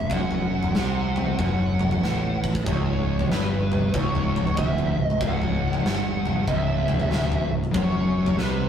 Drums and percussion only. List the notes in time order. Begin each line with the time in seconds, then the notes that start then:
0.10 kick, floor tom
0.31 floor tom
0.63 floor tom
0.75 snare
1.16 floor tom, mid tom
1.39 kick, floor tom
1.79 floor tom, mid tom
1.91 floor tom
2.04 snare
2.44 kick
2.55 kick
2.66 kick, floor tom
3.19 floor tom
3.32 snare
3.72 floor tom, mid tom
3.94 kick, floor tom
4.15 floor tom
4.36 floor tom, mid tom
4.47 floor tom
4.57 kick, mid tom
4.78 floor tom
5.10 mid tom
5.21 kick, floor tom
5.42 floor tom
5.73 floor tom
5.86 snare
6.25 floor tom, mid tom
6.48 kick, floor tom
6.88 floor tom, mid tom
7.00 floor tom
7.11 snare, mid tom
7.32 floor tom
7.64 mid tom
7.74 kick, floor tom
8.26 floor tom
8.39 snare